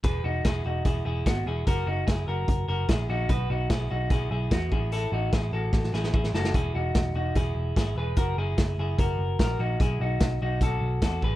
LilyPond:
<<
  \new Staff \with { instrumentName = "Clean electric guitar" } { \time 4/4 \key e \major \tempo 4 = 148 <gis' b'>8 <dis' fis'>8 <e' gis'>8 <dis' fis'>8 <e' gis'>8 <e' gis'>8 <b fis'>8 <e' gis'>8 | <fis' ais'>8 <dis' fis'>8 <e' gis'>8 <fis' ais'>4 <fis' ais'>8 <e' gis'>8 <dis' fis'>8 | <fis' b'>8 <dis' fis'>8 <e' gis'>8 <dis' fis'>8 <e' gis'>8 <e' gis'>8 <b fis'>8 <e' gis'>8 | <e' a'>8 <dis' fis'>8 <e' gis'>8 <fis' a'>4 <e' gis'>8 <e' gis'>8 <fis' a'>8 |
<e' gis'>8 <dis' fis'>4 <dis' fis'>8 <e' gis'>4 <e' gis'>8 <gis' b'>8 | <fis' ais'>8 <e' gis'>4 <e' gis'>8 <fis' ais'>4 <fis' ais'>8 <dis' fis'>8 | <e' gis'>8 <dis' fis'>4 <dis' fis'>8 <fis' a'>4 <fis' a'>8 <gis' b'>8 | }
  \new Staff \with { instrumentName = "Picked electric bass" } { \clef bass \time 4/4 \key e \major e,,8 e,,8 e,,8 e,,8 e,,8 e,,8 gis,,8 e,,8 | fis,,8 fis,,8 fis,,8 fis,,8 fis,,8 fis,,8 ais,,8 ais,,8 | b,,8 b,,8 b,,8 b,,8 b,,8 b,,8 e,8 a,,8~ | a,,8 a,,8 a,,8 a,,8 a,,8 a,,8 a,,8 fis,,8 |
e,,8 e,,8 e,,8 e,,8 e,,8 e,,8 gis,,8 e,,8 | fis,,8 fis,,8 fis,,8 fis,,8 fis,,8 fis,,8 ais,,8 ais,,8 | b,,8 b,,8 b,,8 b,,8 b,,8 b,,8 e,8 a,,8 | }
  \new DrumStaff \with { instrumentName = "Drums" } \drummode { \time 4/4 <hh bd>4 <hh bd sn>4 <hh bd>4 <hh bd sn>4 | <hh bd>4 <hh bd sn>4 <hh bd>4 <hh bd sn>4 | <hh bd>4 <hh bd sn>4 <hh bd>4 <hh bd sn>8 bd8 | hh4 <hh bd sn>4 <bd sn>16 sn16 sn16 sn16 bd16 sn16 sn16 sn16 |
<hh bd>4 <hh bd sn>4 <hh bd>4 <hh bd sn>4 | <hh bd>4 <hh bd sn>4 <hh bd>4 <hh bd sn>4 | <hh bd>4 <hh bd sn>4 <hh bd>4 <hh bd sn>8 bd8 | }
>>